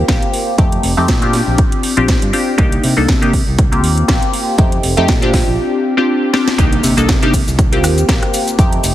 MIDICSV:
0, 0, Header, 1, 5, 480
1, 0, Start_track
1, 0, Tempo, 500000
1, 563, Time_signature, 4, 2, 24, 8
1, 8587, End_track
2, 0, Start_track
2, 0, Title_t, "Analog polysynth"
2, 0, Program_c, 0, 90
2, 79, Note_on_c, 0, 58, 94
2, 80, Note_on_c, 0, 60, 89
2, 83, Note_on_c, 0, 65, 88
2, 85, Note_on_c, 0, 67, 108
2, 535, Note_off_c, 0, 58, 0
2, 536, Note_off_c, 0, 60, 0
2, 537, Note_off_c, 0, 65, 0
2, 538, Note_off_c, 0, 67, 0
2, 558, Note_on_c, 0, 57, 83
2, 561, Note_on_c, 0, 60, 78
2, 563, Note_on_c, 0, 63, 80
2, 566, Note_on_c, 0, 67, 91
2, 902, Note_off_c, 0, 57, 0
2, 903, Note_off_c, 0, 60, 0
2, 904, Note_off_c, 0, 63, 0
2, 906, Note_off_c, 0, 67, 0
2, 933, Note_on_c, 0, 57, 96
2, 935, Note_on_c, 0, 60, 89
2, 938, Note_on_c, 0, 63, 89
2, 941, Note_on_c, 0, 67, 101
2, 1142, Note_off_c, 0, 57, 0
2, 1144, Note_off_c, 0, 60, 0
2, 1145, Note_off_c, 0, 63, 0
2, 1146, Note_off_c, 0, 67, 0
2, 1167, Note_on_c, 0, 60, 103
2, 1172, Note_on_c, 0, 62, 91
2, 1178, Note_on_c, 0, 65, 91
2, 1182, Note_on_c, 0, 67, 112
2, 1860, Note_off_c, 0, 60, 0
2, 1862, Note_off_c, 0, 62, 0
2, 1865, Note_off_c, 0, 65, 0
2, 1867, Note_off_c, 0, 67, 0
2, 1890, Note_on_c, 0, 60, 86
2, 1893, Note_on_c, 0, 62, 77
2, 1895, Note_on_c, 0, 65, 77
2, 1898, Note_on_c, 0, 67, 94
2, 2214, Note_off_c, 0, 60, 0
2, 2215, Note_off_c, 0, 62, 0
2, 2217, Note_off_c, 0, 65, 0
2, 2218, Note_off_c, 0, 67, 0
2, 2235, Note_on_c, 0, 60, 81
2, 2238, Note_on_c, 0, 62, 70
2, 2240, Note_on_c, 0, 65, 75
2, 2243, Note_on_c, 0, 67, 90
2, 2453, Note_off_c, 0, 60, 0
2, 2455, Note_off_c, 0, 62, 0
2, 2456, Note_off_c, 0, 65, 0
2, 2457, Note_off_c, 0, 67, 0
2, 2474, Note_on_c, 0, 58, 93
2, 2477, Note_on_c, 0, 62, 83
2, 2479, Note_on_c, 0, 63, 89
2, 2482, Note_on_c, 0, 67, 107
2, 2820, Note_off_c, 0, 58, 0
2, 2821, Note_off_c, 0, 62, 0
2, 2822, Note_off_c, 0, 63, 0
2, 2824, Note_off_c, 0, 67, 0
2, 2848, Note_on_c, 0, 58, 73
2, 2850, Note_on_c, 0, 62, 70
2, 2853, Note_on_c, 0, 63, 68
2, 2855, Note_on_c, 0, 69, 85
2, 3060, Note_off_c, 0, 58, 0
2, 3061, Note_off_c, 0, 62, 0
2, 3062, Note_off_c, 0, 63, 0
2, 3064, Note_off_c, 0, 69, 0
2, 3087, Note_on_c, 0, 58, 102
2, 3089, Note_on_c, 0, 62, 88
2, 3092, Note_on_c, 0, 63, 93
2, 3094, Note_on_c, 0, 67, 117
2, 3183, Note_off_c, 0, 58, 0
2, 3184, Note_off_c, 0, 62, 0
2, 3186, Note_off_c, 0, 63, 0
2, 3187, Note_off_c, 0, 67, 0
2, 3569, Note_on_c, 0, 58, 84
2, 3571, Note_on_c, 0, 60, 72
2, 3574, Note_on_c, 0, 65, 73
2, 3577, Note_on_c, 0, 67, 85
2, 3894, Note_off_c, 0, 58, 0
2, 3895, Note_off_c, 0, 60, 0
2, 3896, Note_off_c, 0, 65, 0
2, 3898, Note_off_c, 0, 67, 0
2, 3917, Note_on_c, 0, 58, 96
2, 3918, Note_on_c, 0, 60, 85
2, 3921, Note_on_c, 0, 65, 88
2, 3924, Note_on_c, 0, 67, 106
2, 4374, Note_off_c, 0, 58, 0
2, 4375, Note_off_c, 0, 60, 0
2, 4376, Note_off_c, 0, 65, 0
2, 4378, Note_off_c, 0, 67, 0
2, 4396, Note_on_c, 0, 57, 83
2, 4398, Note_on_c, 0, 60, 79
2, 4401, Note_on_c, 0, 63, 78
2, 4403, Note_on_c, 0, 67, 91
2, 4741, Note_off_c, 0, 57, 0
2, 4742, Note_off_c, 0, 60, 0
2, 4743, Note_off_c, 0, 63, 0
2, 4744, Note_off_c, 0, 67, 0
2, 4771, Note_on_c, 0, 57, 96
2, 4772, Note_on_c, 0, 60, 84
2, 4776, Note_on_c, 0, 63, 89
2, 4778, Note_on_c, 0, 67, 105
2, 4981, Note_off_c, 0, 57, 0
2, 4982, Note_off_c, 0, 60, 0
2, 4984, Note_off_c, 0, 63, 0
2, 4985, Note_off_c, 0, 67, 0
2, 5008, Note_on_c, 0, 60, 95
2, 5013, Note_on_c, 0, 62, 93
2, 5016, Note_on_c, 0, 65, 91
2, 5022, Note_on_c, 0, 67, 108
2, 5700, Note_off_c, 0, 60, 0
2, 5703, Note_off_c, 0, 62, 0
2, 5704, Note_off_c, 0, 65, 0
2, 5707, Note_off_c, 0, 67, 0
2, 5731, Note_on_c, 0, 60, 82
2, 5734, Note_on_c, 0, 62, 81
2, 5736, Note_on_c, 0, 65, 79
2, 5738, Note_on_c, 0, 67, 89
2, 6055, Note_off_c, 0, 60, 0
2, 6056, Note_off_c, 0, 62, 0
2, 6057, Note_off_c, 0, 65, 0
2, 6058, Note_off_c, 0, 67, 0
2, 6079, Note_on_c, 0, 60, 79
2, 6081, Note_on_c, 0, 62, 77
2, 6084, Note_on_c, 0, 65, 75
2, 6085, Note_on_c, 0, 67, 89
2, 6295, Note_off_c, 0, 60, 0
2, 6296, Note_off_c, 0, 62, 0
2, 6298, Note_off_c, 0, 65, 0
2, 6298, Note_off_c, 0, 67, 0
2, 6319, Note_on_c, 0, 58, 101
2, 6322, Note_on_c, 0, 62, 90
2, 6325, Note_on_c, 0, 63, 93
2, 6327, Note_on_c, 0, 67, 105
2, 6662, Note_off_c, 0, 58, 0
2, 6664, Note_off_c, 0, 62, 0
2, 6665, Note_off_c, 0, 63, 0
2, 6666, Note_off_c, 0, 67, 0
2, 6692, Note_on_c, 0, 58, 77
2, 6694, Note_on_c, 0, 62, 68
2, 6697, Note_on_c, 0, 63, 68
2, 6699, Note_on_c, 0, 69, 82
2, 6902, Note_off_c, 0, 58, 0
2, 6903, Note_off_c, 0, 62, 0
2, 6905, Note_off_c, 0, 63, 0
2, 6906, Note_off_c, 0, 69, 0
2, 6934, Note_on_c, 0, 58, 101
2, 6937, Note_on_c, 0, 62, 92
2, 6939, Note_on_c, 0, 63, 97
2, 6942, Note_on_c, 0, 67, 116
2, 7027, Note_off_c, 0, 58, 0
2, 7028, Note_off_c, 0, 62, 0
2, 7029, Note_off_c, 0, 63, 0
2, 7030, Note_off_c, 0, 67, 0
2, 7413, Note_on_c, 0, 58, 82
2, 7416, Note_on_c, 0, 60, 78
2, 7418, Note_on_c, 0, 65, 77
2, 7421, Note_on_c, 0, 67, 91
2, 7736, Note_off_c, 0, 58, 0
2, 7737, Note_off_c, 0, 60, 0
2, 7738, Note_off_c, 0, 65, 0
2, 7740, Note_off_c, 0, 67, 0
2, 7761, Note_on_c, 0, 58, 97
2, 7762, Note_on_c, 0, 60, 92
2, 7766, Note_on_c, 0, 65, 90
2, 7768, Note_on_c, 0, 67, 107
2, 8216, Note_off_c, 0, 58, 0
2, 8217, Note_off_c, 0, 60, 0
2, 8219, Note_off_c, 0, 65, 0
2, 8220, Note_off_c, 0, 67, 0
2, 8241, Note_on_c, 0, 57, 84
2, 8243, Note_on_c, 0, 60, 79
2, 8247, Note_on_c, 0, 63, 77
2, 8249, Note_on_c, 0, 67, 101
2, 8583, Note_off_c, 0, 57, 0
2, 8585, Note_off_c, 0, 60, 0
2, 8586, Note_off_c, 0, 63, 0
2, 8587, Note_off_c, 0, 67, 0
2, 8587, End_track
3, 0, Start_track
3, 0, Title_t, "Fingered electric bass"
3, 0, Program_c, 1, 33
3, 81, Note_on_c, 1, 34, 83
3, 175, Note_off_c, 1, 34, 0
3, 560, Note_on_c, 1, 41, 96
3, 738, Note_off_c, 1, 41, 0
3, 799, Note_on_c, 1, 29, 93
3, 894, Note_off_c, 1, 29, 0
3, 933, Note_on_c, 1, 41, 94
3, 1009, Note_off_c, 1, 41, 0
3, 1041, Note_on_c, 1, 46, 88
3, 1351, Note_off_c, 1, 46, 0
3, 1413, Note_on_c, 1, 34, 81
3, 1489, Note_off_c, 1, 34, 0
3, 1893, Note_on_c, 1, 34, 80
3, 2055, Note_off_c, 1, 34, 0
3, 2135, Note_on_c, 1, 43, 81
3, 2210, Note_off_c, 1, 43, 0
3, 2482, Note_on_c, 1, 36, 96
3, 2658, Note_off_c, 1, 36, 0
3, 2723, Note_on_c, 1, 48, 94
3, 2816, Note_off_c, 1, 48, 0
3, 2855, Note_on_c, 1, 36, 99
3, 2930, Note_off_c, 1, 36, 0
3, 2961, Note_on_c, 1, 48, 89
3, 3271, Note_off_c, 1, 48, 0
3, 3336, Note_on_c, 1, 36, 81
3, 3681, Note_off_c, 1, 36, 0
3, 3681, Note_on_c, 1, 39, 98
3, 3858, Note_off_c, 1, 39, 0
3, 3922, Note_on_c, 1, 34, 82
3, 4016, Note_off_c, 1, 34, 0
3, 4402, Note_on_c, 1, 41, 101
3, 4578, Note_off_c, 1, 41, 0
3, 4641, Note_on_c, 1, 29, 96
3, 4735, Note_off_c, 1, 29, 0
3, 4774, Note_on_c, 1, 41, 101
3, 4850, Note_off_c, 1, 41, 0
3, 5254, Note_on_c, 1, 34, 82
3, 5330, Note_off_c, 1, 34, 0
3, 6323, Note_on_c, 1, 36, 99
3, 6499, Note_off_c, 1, 36, 0
3, 6562, Note_on_c, 1, 48, 96
3, 6656, Note_off_c, 1, 48, 0
3, 6694, Note_on_c, 1, 36, 99
3, 6770, Note_off_c, 1, 36, 0
3, 6803, Note_on_c, 1, 48, 88
3, 7112, Note_off_c, 1, 48, 0
3, 7174, Note_on_c, 1, 36, 77
3, 7522, Note_off_c, 1, 36, 0
3, 7522, Note_on_c, 1, 39, 104
3, 7699, Note_off_c, 1, 39, 0
3, 7763, Note_on_c, 1, 34, 85
3, 7856, Note_off_c, 1, 34, 0
3, 8243, Note_on_c, 1, 41, 101
3, 8419, Note_off_c, 1, 41, 0
3, 8482, Note_on_c, 1, 29, 93
3, 8576, Note_off_c, 1, 29, 0
3, 8587, End_track
4, 0, Start_track
4, 0, Title_t, "Impact"
4, 0, Program_c, 2, 103
4, 6323, Note_on_c, 2, 60, 78
4, 8243, Note_off_c, 2, 60, 0
4, 8587, End_track
5, 0, Start_track
5, 0, Title_t, "Drums"
5, 82, Note_on_c, 9, 36, 118
5, 83, Note_on_c, 9, 42, 76
5, 85, Note_on_c, 9, 38, 111
5, 178, Note_off_c, 9, 36, 0
5, 179, Note_off_c, 9, 42, 0
5, 181, Note_off_c, 9, 38, 0
5, 216, Note_on_c, 9, 42, 48
5, 312, Note_off_c, 9, 42, 0
5, 322, Note_on_c, 9, 46, 89
5, 418, Note_off_c, 9, 46, 0
5, 561, Note_on_c, 9, 36, 111
5, 561, Note_on_c, 9, 42, 77
5, 657, Note_off_c, 9, 36, 0
5, 657, Note_off_c, 9, 42, 0
5, 695, Note_on_c, 9, 42, 51
5, 791, Note_off_c, 9, 42, 0
5, 801, Note_on_c, 9, 46, 103
5, 897, Note_off_c, 9, 46, 0
5, 1040, Note_on_c, 9, 42, 80
5, 1041, Note_on_c, 9, 36, 109
5, 1042, Note_on_c, 9, 38, 112
5, 1136, Note_off_c, 9, 42, 0
5, 1137, Note_off_c, 9, 36, 0
5, 1138, Note_off_c, 9, 38, 0
5, 1173, Note_on_c, 9, 42, 48
5, 1269, Note_off_c, 9, 42, 0
5, 1280, Note_on_c, 9, 46, 88
5, 1282, Note_on_c, 9, 38, 58
5, 1376, Note_off_c, 9, 46, 0
5, 1378, Note_off_c, 9, 38, 0
5, 1519, Note_on_c, 9, 42, 80
5, 1521, Note_on_c, 9, 36, 115
5, 1615, Note_off_c, 9, 42, 0
5, 1617, Note_off_c, 9, 36, 0
5, 1654, Note_on_c, 9, 42, 53
5, 1750, Note_off_c, 9, 42, 0
5, 1760, Note_on_c, 9, 46, 99
5, 1856, Note_off_c, 9, 46, 0
5, 1893, Note_on_c, 9, 42, 36
5, 1989, Note_off_c, 9, 42, 0
5, 2000, Note_on_c, 9, 42, 77
5, 2001, Note_on_c, 9, 36, 109
5, 2003, Note_on_c, 9, 38, 109
5, 2096, Note_off_c, 9, 42, 0
5, 2097, Note_off_c, 9, 36, 0
5, 2099, Note_off_c, 9, 38, 0
5, 2133, Note_on_c, 9, 42, 52
5, 2229, Note_off_c, 9, 42, 0
5, 2240, Note_on_c, 9, 46, 91
5, 2336, Note_off_c, 9, 46, 0
5, 2481, Note_on_c, 9, 42, 77
5, 2482, Note_on_c, 9, 36, 106
5, 2577, Note_off_c, 9, 42, 0
5, 2578, Note_off_c, 9, 36, 0
5, 2615, Note_on_c, 9, 42, 54
5, 2711, Note_off_c, 9, 42, 0
5, 2722, Note_on_c, 9, 46, 99
5, 2818, Note_off_c, 9, 46, 0
5, 2962, Note_on_c, 9, 36, 115
5, 2962, Note_on_c, 9, 42, 77
5, 2964, Note_on_c, 9, 38, 116
5, 3058, Note_off_c, 9, 36, 0
5, 3058, Note_off_c, 9, 42, 0
5, 3060, Note_off_c, 9, 38, 0
5, 3095, Note_on_c, 9, 42, 54
5, 3191, Note_off_c, 9, 42, 0
5, 3201, Note_on_c, 9, 46, 84
5, 3202, Note_on_c, 9, 36, 58
5, 3297, Note_off_c, 9, 46, 0
5, 3298, Note_off_c, 9, 36, 0
5, 3442, Note_on_c, 9, 36, 112
5, 3442, Note_on_c, 9, 42, 76
5, 3538, Note_off_c, 9, 36, 0
5, 3538, Note_off_c, 9, 42, 0
5, 3576, Note_on_c, 9, 42, 55
5, 3672, Note_off_c, 9, 42, 0
5, 3683, Note_on_c, 9, 46, 104
5, 3779, Note_off_c, 9, 46, 0
5, 3816, Note_on_c, 9, 42, 36
5, 3912, Note_off_c, 9, 42, 0
5, 3922, Note_on_c, 9, 36, 111
5, 3922, Note_on_c, 9, 42, 82
5, 3925, Note_on_c, 9, 38, 115
5, 4018, Note_off_c, 9, 36, 0
5, 4018, Note_off_c, 9, 42, 0
5, 4021, Note_off_c, 9, 38, 0
5, 4056, Note_on_c, 9, 42, 54
5, 4152, Note_off_c, 9, 42, 0
5, 4161, Note_on_c, 9, 46, 93
5, 4257, Note_off_c, 9, 46, 0
5, 4401, Note_on_c, 9, 42, 80
5, 4402, Note_on_c, 9, 36, 114
5, 4497, Note_off_c, 9, 42, 0
5, 4498, Note_off_c, 9, 36, 0
5, 4534, Note_on_c, 9, 42, 56
5, 4630, Note_off_c, 9, 42, 0
5, 4640, Note_on_c, 9, 46, 100
5, 4736, Note_off_c, 9, 46, 0
5, 4775, Note_on_c, 9, 42, 39
5, 4871, Note_off_c, 9, 42, 0
5, 4880, Note_on_c, 9, 42, 83
5, 4882, Note_on_c, 9, 36, 112
5, 4883, Note_on_c, 9, 38, 118
5, 4976, Note_off_c, 9, 42, 0
5, 4978, Note_off_c, 9, 36, 0
5, 4979, Note_off_c, 9, 38, 0
5, 5015, Note_on_c, 9, 42, 54
5, 5111, Note_off_c, 9, 42, 0
5, 5122, Note_on_c, 9, 36, 59
5, 5122, Note_on_c, 9, 46, 88
5, 5124, Note_on_c, 9, 38, 62
5, 5218, Note_off_c, 9, 36, 0
5, 5218, Note_off_c, 9, 46, 0
5, 5220, Note_off_c, 9, 38, 0
5, 6083, Note_on_c, 9, 38, 88
5, 6179, Note_off_c, 9, 38, 0
5, 6216, Note_on_c, 9, 38, 98
5, 6312, Note_off_c, 9, 38, 0
5, 6323, Note_on_c, 9, 36, 113
5, 6323, Note_on_c, 9, 42, 86
5, 6324, Note_on_c, 9, 82, 35
5, 6419, Note_off_c, 9, 36, 0
5, 6419, Note_off_c, 9, 42, 0
5, 6420, Note_off_c, 9, 82, 0
5, 6456, Note_on_c, 9, 42, 54
5, 6552, Note_off_c, 9, 42, 0
5, 6562, Note_on_c, 9, 46, 101
5, 6563, Note_on_c, 9, 82, 80
5, 6658, Note_off_c, 9, 46, 0
5, 6659, Note_off_c, 9, 82, 0
5, 6696, Note_on_c, 9, 42, 39
5, 6698, Note_on_c, 9, 82, 45
5, 6792, Note_off_c, 9, 42, 0
5, 6794, Note_off_c, 9, 82, 0
5, 6803, Note_on_c, 9, 36, 116
5, 6804, Note_on_c, 9, 42, 80
5, 6805, Note_on_c, 9, 82, 32
5, 6806, Note_on_c, 9, 38, 122
5, 6899, Note_off_c, 9, 36, 0
5, 6900, Note_off_c, 9, 42, 0
5, 6901, Note_off_c, 9, 82, 0
5, 6902, Note_off_c, 9, 38, 0
5, 6937, Note_on_c, 9, 42, 55
5, 7033, Note_off_c, 9, 42, 0
5, 7043, Note_on_c, 9, 36, 63
5, 7043, Note_on_c, 9, 46, 93
5, 7045, Note_on_c, 9, 82, 77
5, 7139, Note_off_c, 9, 36, 0
5, 7139, Note_off_c, 9, 46, 0
5, 7141, Note_off_c, 9, 82, 0
5, 7179, Note_on_c, 9, 82, 48
5, 7275, Note_off_c, 9, 82, 0
5, 7283, Note_on_c, 9, 36, 121
5, 7285, Note_on_c, 9, 42, 83
5, 7286, Note_on_c, 9, 82, 35
5, 7379, Note_off_c, 9, 36, 0
5, 7381, Note_off_c, 9, 42, 0
5, 7382, Note_off_c, 9, 82, 0
5, 7417, Note_on_c, 9, 42, 60
5, 7513, Note_off_c, 9, 42, 0
5, 7525, Note_on_c, 9, 37, 82
5, 7525, Note_on_c, 9, 46, 104
5, 7526, Note_on_c, 9, 82, 78
5, 7621, Note_off_c, 9, 37, 0
5, 7621, Note_off_c, 9, 46, 0
5, 7622, Note_off_c, 9, 82, 0
5, 7658, Note_on_c, 9, 42, 38
5, 7660, Note_on_c, 9, 82, 44
5, 7754, Note_off_c, 9, 42, 0
5, 7756, Note_off_c, 9, 82, 0
5, 7763, Note_on_c, 9, 36, 111
5, 7765, Note_on_c, 9, 42, 81
5, 7766, Note_on_c, 9, 82, 35
5, 7767, Note_on_c, 9, 38, 122
5, 7859, Note_off_c, 9, 36, 0
5, 7861, Note_off_c, 9, 42, 0
5, 7862, Note_off_c, 9, 82, 0
5, 7863, Note_off_c, 9, 38, 0
5, 7897, Note_on_c, 9, 37, 74
5, 7897, Note_on_c, 9, 42, 57
5, 7993, Note_off_c, 9, 37, 0
5, 7993, Note_off_c, 9, 42, 0
5, 8004, Note_on_c, 9, 46, 98
5, 8005, Note_on_c, 9, 82, 79
5, 8100, Note_off_c, 9, 46, 0
5, 8101, Note_off_c, 9, 82, 0
5, 8136, Note_on_c, 9, 42, 38
5, 8137, Note_on_c, 9, 82, 43
5, 8232, Note_off_c, 9, 42, 0
5, 8233, Note_off_c, 9, 82, 0
5, 8243, Note_on_c, 9, 36, 124
5, 8244, Note_on_c, 9, 42, 81
5, 8245, Note_on_c, 9, 82, 34
5, 8339, Note_off_c, 9, 36, 0
5, 8340, Note_off_c, 9, 42, 0
5, 8341, Note_off_c, 9, 82, 0
5, 8376, Note_on_c, 9, 42, 56
5, 8472, Note_off_c, 9, 42, 0
5, 8483, Note_on_c, 9, 46, 108
5, 8484, Note_on_c, 9, 82, 77
5, 8579, Note_off_c, 9, 46, 0
5, 8580, Note_off_c, 9, 82, 0
5, 8587, End_track
0, 0, End_of_file